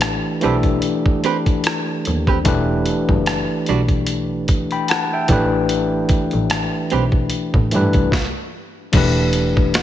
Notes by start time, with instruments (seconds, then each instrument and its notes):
Already playing: tine electric piano E3 A3 D4 G4 B4
0.01 cross-stick, closed hi-hat
0.41 double bass B1, tine electric piano E3 A3 D4 G4, hollow-body jazz guitar C4 G4 B4, closed hi-hat
0.45 tine electric piano A4
0.63 kick, closed hi-hat
0.82 closed hi-hat
1.06 kick
1.24 hollow-body jazz guitar C4 G4 B4, closed hi-hat
1.46 kick, closed hi-hat
1.64 cross-stick, closed hi-hat
2.05 double bass D#2, closed hi-hat
2.27 hollow-body jazz guitar C4 G4 B4, kick
2.44 double bass E1, tine electric piano E3 A3 D4 G4, kick, closed hi-hat
2.48 tine electric piano B4
2.86 closed hi-hat
3.09 double bass F#1, kick
3.26 cross-stick, closed hi-hat
3.66 double bass B1, hollow-body jazz guitar G3 D4 F#4, closed hi-hat
3.88 kick, closed hi-hat
4.07 closed hi-hat
4.48 kick, closed hi-hat
4.71 tine electric piano G5 B5, closed hi-hat
4.88 tine electric piano F#5 A5, cross-stick, closed hi-hat
5.13 tine electric piano E5 G5
5.28 double bass A1, tine electric piano E3 A3 D4 G4, kick, closed hi-hat
5.32 tine electric piano B4
5.69 closed hi-hat
6.09 kick, closed hi-hat
6.31 double bass A1, closed hi-hat
6.50 cross-stick, closed hi-hat
6.90 double bass B1, hollow-body jazz guitar C4 G4 B4, closed hi-hat
7.12 kick
7.30 closed hi-hat
7.54 double bass A2, kick
7.71 double bass G2, tine electric piano E3 A3 D4 G4, closed hi-hat
7.76 tine electric piano B4
7.93 double bass C2, kick, closed hi-hat
8.12 kick, snare
8.92 double bass E1, tine electric piano E3 A3 D4 G4, kick, closed hi-hat, crash
8.97 tine electric piano B4
9.33 closed hi-hat
9.57 kick
9.74 snare, closed hi-hat